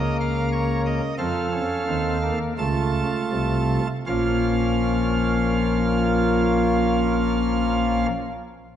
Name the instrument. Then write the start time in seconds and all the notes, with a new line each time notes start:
pipe organ
Already playing: C#2 C#3 A#3 A#4 D#5
0.21 F5
0.52 C#5
0.86 D#5
1.18 F2 F3 C4 A4 F5
1.52 C#4
1.88 D#2 D#3 C4
2.22 A#3
2.58 C#2 C#3 A3 F4 A5
3.32 C2 C3
4.07 A#1 A#2 F3 A#3 C#4 F4 F5